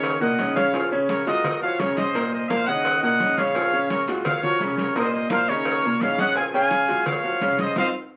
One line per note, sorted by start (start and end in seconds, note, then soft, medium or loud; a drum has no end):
0.00 0.19 D#2 loud
0.00 0.15 C#3 medium
0.00 0.15 C#4 medium
0.00 0.15 D#4 medium
0.00 0.19 A#4 medium
0.00 0.18 C#5 loud
0.00 cowbell loud
0.04 high conga soft
0.20 0.37 C2 medium
0.20 0.35 A#2 medium
0.20 0.35 A#3 medium
0.20 0.36 A#4 medium
0.20 0.55 D#5 medium
0.20 0.53 F#5 medium
0.20 high conga soft
0.39 1.21 A#1 medium
0.39 0.53 C#3 medium
0.39 0.53 C#4 medium
0.39 0.53 D#4 medium
0.39 cowbell medium
0.39 high conga medium
0.56 0.70 C#3 medium
0.56 0.71 C#4 medium
0.56 0.71 C#5 loud
0.56 0.90 C#5 medium
0.56 0.89 F5 loud
0.56 cowbell medium
0.56 high conga loud
0.74 0.88 F3 medium
0.74 0.88 F4 medium
0.74 0.89 G#4 medium
0.74 cowbell loud
0.74 high conga soft
0.92 1.21 C#3 loud
0.92 1.21 C#4 medium
0.92 1.21 C#5 medium
0.92 high conga soft
1.09 1.26 A#4 medium
1.09 1.25 C#5 medium
1.09 cowbell medium
1.09 high conga loud
1.27 1.76 F#1 loud
1.27 1.55 G#3 medium
1.27 1.56 F4 medium
1.27 1.56 F#4 medium
1.27 1.61 A#4 medium
1.27 1.59 D#5 loud
1.27 cowbell medium
1.27 high conga soft
1.44 cowbell loud
1.44 high conga soft
1.44 low conga medium
1.61 1.76 F3 medium
1.61 1.76 F4 medium
1.61 1.76 F#4 medium
1.61 1.78 C#5 medium
1.61 1.78 F5 loud
1.61 high conga soft
1.79 2.61 F1 medium
1.79 2.08 C#3 medium
1.79 2.08 C#4 medium
1.79 1.98 A#4 medium
1.79 1.97 C#5 medium
1.79 2.09 C#5 medium
1.79 cowbell medium
1.79 high conga medium
1.97 2.31 C5 medium
1.97 2.29 D#5 loud
1.97 cowbell medium
1.97 high conga medium
2.14 2.43 A#2 medium
2.14 2.44 A#3 medium
2.14 2.43 A#4 medium
2.14 cowbell medium
2.14 high conga soft
2.32 2.50 C5 medium
2.32 2.49 D#5 loud
2.32 high conga soft
2.49 2.64 A#2 medium
2.49 2.64 A#3 loud
2.49 2.64 A#4 loud
2.49 2.68 C5 medium
2.49 2.67 F5 loud
2.49 cowbell medium
2.49 high conga loud
2.67 3.00 D#2 loud
2.67 2.96 C#3 medium
2.67 2.97 C#4 medium
2.67 2.97 D#4 medium
2.67 3.01 D#5 medium
2.67 3.00 F#5 loud
2.85 cowbell loud
2.85 high conga soft
3.02 3.19 C2 medium
3.02 3.17 A#2 medium
3.02 3.17 A#3 medium
3.02 3.17 A#4 medium
3.02 3.36 D#5 medium
3.02 3.35 F#5 loud
3.02 high conga soft
3.20 4.02 A#1 medium
3.20 3.34 C#3 medium
3.20 3.35 C#4 medium
3.20 3.35 D#4 medium
3.20 cowbell medium
3.20 high conga medium
3.37 3.52 C#3 medium
3.37 3.52 C#4 medium
3.37 3.52 C#5 loud
3.37 3.89 C#5 medium
3.37 3.90 F5 loud
3.37 cowbell medium
3.37 high conga medium
3.55 3.70 F3 medium
3.55 3.70 F4 medium
3.55 3.70 G#4 medium
3.55 cowbell loud
3.55 high conga soft
3.73 4.02 C#3 medium
3.73 4.02 C#4 medium
3.73 4.02 C#5 medium
3.73 high conga soft
3.90 4.08 A#4 medium
3.90 4.07 C#5 loud
3.90 cowbell medium
3.90 high conga loud
4.07 4.56 F#1 medium
4.07 4.37 G#3 medium
4.07 4.37 F4 medium
4.07 4.37 F#4 medium
4.07 cowbell medium
4.07 high conga soft
4.25 4.42 C#5 medium
4.25 4.41 F5 loud
4.25 cowbell loud
4.25 high conga soft
4.25 low conga medium
4.43 4.58 F3 medium
4.43 4.58 F4 medium
4.43 4.58 F#4 medium
4.43 4.77 A#4 medium
4.43 4.76 C#5 loud
4.43 high conga soft
4.43 low conga medium
4.60 5.42 F1 medium
4.60 4.90 C#3 medium
4.60 4.90 C#4 medium
4.60 4.90 C#5 medium
4.60 cowbell medium
4.60 high conga medium
4.77 4.95 A#4 medium
4.77 4.94 C#5 medium
4.77 cowbell medium
4.77 high conga medium
4.95 5.25 A#2 medium
4.95 5.25 A#3 medium
4.95 5.25 A#4 medium
4.95 5.14 C5 medium
4.95 5.11 D#5 loud
4.95 cowbell medium
4.95 high conga soft
5.12 5.30 C5 medium
5.12 5.29 D#5 loud
5.12 high conga soft
5.29 5.45 A#2 medium
5.29 5.45 A#3 loud
5.29 5.46 A#4 loud
5.29 5.49 C5 loud
5.29 5.48 F5 loud
5.29 cowbell medium
5.29 high conga loud
5.48 5.81 D#2 loud
5.48 5.78 C#3 medium
5.48 5.78 C#4 medium
5.48 5.78 D#4 medium
5.48 6.02 A#4 medium
5.48 6.01 C#5 loud
5.65 cowbell loud
5.65 high conga soft
5.83 5.99 C2 medium
5.83 5.99 A#2 medium
5.83 5.99 A#3 loud
5.83 5.99 A#4 medium
5.83 high conga soft
6.00 6.83 A#1 medium
6.00 6.16 C#3 medium
6.00 6.16 C#4 medium
6.00 6.17 D#4 medium
6.00 6.19 C#5 medium
6.00 6.18 F5 loud
6.00 cowbell medium
6.00 high conga medium
6.18 6.34 C#3 medium
6.18 6.34 C#4 loud
6.18 6.34 C#5 medium
6.18 6.37 D#5 medium
6.18 6.36 F#5 loud
6.18 cowbell medium
6.18 high conga loud
6.36 6.51 F3 medium
6.36 6.51 F4 medium
6.36 6.52 G#4 medium
6.36 6.45 F5 medium
6.36 6.44 G#5 loud
6.36 cowbell loud
6.36 high conga soft
6.53 6.83 C#3 loud
6.53 6.83 C#4 medium
6.53 6.83 C#5 medium
6.53 7.03 F5 loud
6.53 7.02 G#5 loud
6.53 high conga soft
6.71 cowbell medium
6.71 high conga loud
6.88 7.38 F#1 loud
6.88 7.17 G#3 medium
6.88 7.17 F4 medium
6.88 7.18 F#4 medium
6.88 cowbell medium
6.88 high conga soft
7.06 7.56 C#5 medium
7.06 7.55 F5 loud
7.06 cowbell loud
7.06 high conga soft
7.06 low conga medium
7.24 7.38 F3 medium
7.24 7.39 F4 medium
7.24 7.39 F#4 medium
7.24 high conga soft
7.41 7.74 F1 medium
7.41 7.70 C#3 medium
7.41 7.71 C#4 medium
7.41 7.71 C#5 medium
7.41 cowbell medium
7.41 high conga medium
7.58 7.76 C5 medium
7.58 7.76 D#5 loud
7.58 cowbell medium
7.58 high conga loud
7.76 7.89 F2 medium
7.76 7.88 C4 loud
7.76 7.88 D#4 loud
7.76 7.88 F4 loud
7.76 7.86 C5 loud
7.76 7.86 D#5 loud
7.76 7.86 F5 loud
7.76 cowbell medium
7.76 high conga loud